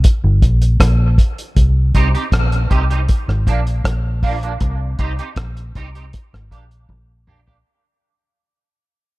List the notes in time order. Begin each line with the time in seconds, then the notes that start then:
0.04 kick, closed hi-hat
0.24 G1
0.42 A#1, kick, closed hi-hat
0.62 closed hi-hat
0.80 A#1, kick, cross-stick, closed hi-hat
1.18 kick, closed hi-hat
1.38 closed hi-hat
1.57 C2, kick, closed hi-hat
1.95 C2 C4 D#4 G4, kick, closed hi-hat
2.15 C4 D#4 G4, closed hi-hat
2.32 A#1, kick, cross-stick, closed hi-hat
2.52 closed hi-hat
2.70 C2 C4 D#4 G4, kick, closed hi-hat
2.90 C4 D#4 G4, closed hi-hat
3.09 kick, closed hi-hat
3.28 G#1, cross-stick
3.47 A#1 F3 A#3 D4, kick, closed hi-hat
3.67 closed hi-hat
3.84 A#1, kick, cross-stick, closed hi-hat
4.23 F3 A#3 D4, kick, open hi-hat
4.43 F3 A#3 D4, closed hi-hat
4.61 C2, kick, closed hi-hat
4.99 C2 C4 D#4 G4, kick, closed hi-hat
5.19 C4 D#4 G4, closed hi-hat
5.36 A#1, kick, cross-stick, closed hi-hat
5.57 closed hi-hat
5.75 C2 C4 D#4 G4, kick, closed hi-hat
5.95 C4 D#4 G4, closed hi-hat
6.13 kick, closed hi-hat
6.33 G#1, cross-stick
6.51 A#1 A#3 D4 G4, kick, closed hi-hat
6.71 closed hi-hat
6.89 A#1, kick, high tom
7.27 A#3 D4 G4, mid tom
7.47 A#3 D4 G4, floor tom